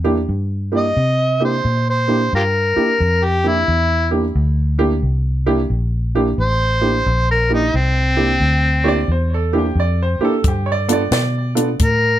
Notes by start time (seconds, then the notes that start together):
Already playing: E2
0.04 A#3 D4 E4 G4
0.29 G2
0.72 A#3 D4 E4 G4
0.77 D#5
0.97 C3
1.40 A#3 D4 E4 G4
1.45 C5
1.65 A#2
1.90 C5
2.08 A#3 D4 E4 G4
2.33 G2 F4 G4 A#4
2.76 A#3 D4 E4 G4, muted fingered electric bass stroke
3.00 F2
3.25 G4
3.44 A#3 D4 E4 G4
3.48 E4
3.68 E2
4.11 A#3 D4 E4 G4
4.35 D2
4.78 A#3 D4 E4 G4
5.03 C2
5.46 A#3 D4 E4 G4
5.70 A#1
6.15 A#3 D4 E4 G4
6.38 A1 C5
6.81 A#3 D4 E4 G4
7.06 A#1
7.31 A#4
7.50 A#3 D4 E4 G4
7.54 D#4
7.74 C2 C4
8.17 A#3 D4 E4 G4
8.40 D2
8.84 A#3 D4 E4 G4 C#5
8.88 D5
9.08 E2 C5
9.34 A4
9.53 A#3 D4 E4 G4
9.58 G4
9.75 F2
9.80 D5
10.02 C5
10.19 A#3 D4 E4 G4, muted fingered electric bass stroke
10.25 A4
10.44 G2 G4, kick, closed hi-hat
10.66 C#5
10.72 D5
10.88 B3 D4 F4 A4, closed hi-hat
10.93 D5
11.11 B2 D5, snare, closed hi-hat
11.55 B3 D4 F4 A4, closed hi-hat
11.79 A2 A#4, kick, closed hi-hat